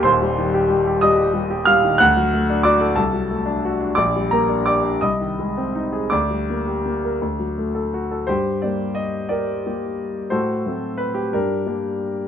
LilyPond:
<<
  \new Staff \with { instrumentName = "Grand piano" } { \time 6/8 \key g \minor \tempo 4. = 59 <c'' c'''>4. <ees'' ees'''>4 <f'' f'''>8 | <fis'' fis'''>4 <d'' d'''>8 <a' a''>4. | <d'' d'''>8 <bes' bes''>8 <d'' d'''>8 <ees'' ees'''>4. | <d'' d'''>2~ <d'' d'''>8 r8 |
<g' c''>8 d''8 ees''8 <g' bes' d''>4. | <fis' a' c''>4 b'16 g'16 <d' g' bes'>4. | }
  \new Staff \with { instrumentName = "Grand piano" } { \time 6/8 \key g \minor <ees,, ees,>16 g16 ees16 g'16 g16 g'16 g16 g'16 g16 g'16 g16 ees16 | d,16 fis16 a16 d'16 fis'16 a'16 c,16 fis16 a16 d'16 fis'16 d'16 | bes,,16 g16 bes16 d'16 g'16 d'16 c,16 ees16 aes16 c'16 ees'16 aes'16 | d,16 g16 bes16 g'16 bes16 bes'16 d,16 fis16 a16 a'16 fis'16 a'16 |
g,8 <g bes g'>4. <g bes g'>4 | a,8 <fis a c'>4 g,8 <g bes d'>4 | }
>>